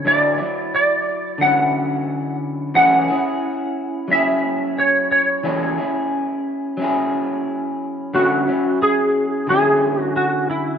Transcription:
0.05 D3 F#3 E4 D5
0.38 F#3 E4
0.75 D5
1.38 D3 F#3 F#5
1.43 C#4 E4
2.74 E3 F#3 C#4 E4 G#4 F#5
3.08 C#4 E4 G#4
4.08 F#3 C#4 E5
4.12 E4 G#4
4.79 C#5
5.11 C#5
5.43 E3 F#3 C#4 E4 G#4
5.78 C#4 E4 G#4
6.77 F#3 C#4
6.82 E4 G#4
8.13 D3 F#3 C#4 E4 F#4
8.47 F#3 C#4 E4
8.82 G#4
9.47 D3 F#3 G#4
9.52 C#4 E4
10.01 F#4
10.16 F#4
10.50 E4

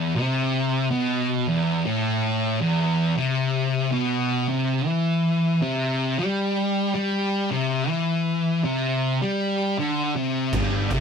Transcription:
Already playing: E2
0.15 C3
0.91 B2
1.48 E2
1.85 A2
2.61 E2
3.17 C3
3.92 B2
4.48 C3
4.86 E3
5.62 C3
6.19 G3
6.94 G3
7.51 C3
7.88 E3
8.64 C3
9.22 G3
9.78 D3
10.16 C3
10.52 G1 G2, kick, crash
10.91 C2 C3, kick, crash

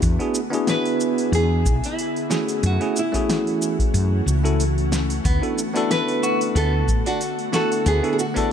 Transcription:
Already playing: B3 D4 E4 F#4 G#4
0.02 E2 D3 E4 G#4, kick, open hi-hat, shaker
0.19 B3 D4 E4 F#4 G#4, open hi-hat
0.35 shaker
0.50 B3 D4 E4 F#4 G#4, open hi-hat, shaker
0.67 B4, snare, open hi-hat, shaker
0.85 open hi-hat
1.00 shaker
1.18 open hi-hat, shaker
1.32 E2 G#4, open hi-hat, shaker
1.65 B1, kick, shaker
1.84 E4, open hi-hat, shaker
1.99 open hi-hat, shaker
2.16 open hi-hat
2.30 A3 C#4 E4 F#4 G#4, snare, shaker
2.48 open hi-hat, shaker
2.63 F#2 E3 A3 C#4 F#4, open hi-hat, shaker
2.80 A3 C#4 E4 F#4 G#4, open hi-hat
2.96 E4, shaker
3.12 A3 C#4 E4 F#4 G#4, kick, open hi-hat, shaker
3.30 snare, open hi-hat, shaker
3.47 open hi-hat
3.62 shaker
3.79 kick, open hi-hat, shaker
3.94 F#2, open hi-hat, shaker
4.26 C#2, shaker
4.44 A3 C#4 E4 F#4 A4, open hi-hat, shaker
4.60 open hi-hat, shaker
4.78 open hi-hat
4.92 snare, shaker
5.10 open hi-hat, shaker
5.24 D2 D3 B3, kick, open hi-hat, shaker
5.41 B3 D4 E4 F#4 A4, open hi-hat
5.58 shaker
5.74 B3 D4 E4 F#4 A4, open hi-hat, shaker
5.91 B4, snare, open hi-hat, shaker
6.08 open hi-hat
6.23 F#4, shaker
6.41 open hi-hat, shaker
6.55 D2 B3 A4, open hi-hat, shaker
6.88 A1, kick, shaker
7.06 D4 F#4, open hi-hat, shaker
7.21 open hi-hat, shaker
7.39 open hi-hat
7.52 B3 D4 E4 F#4 A4, snare, shaker
7.72 open hi-hat, shaker
7.86 D2 B3 G#4 C#5, open hi-hat, shaker
8.03 B3 D4 E4 F#4 A4, open hi-hat
8.13 G#4
8.19 F#4, shaker
8.34 B3 D4 E4 F#4 A4, kick, open hi-hat, shaker

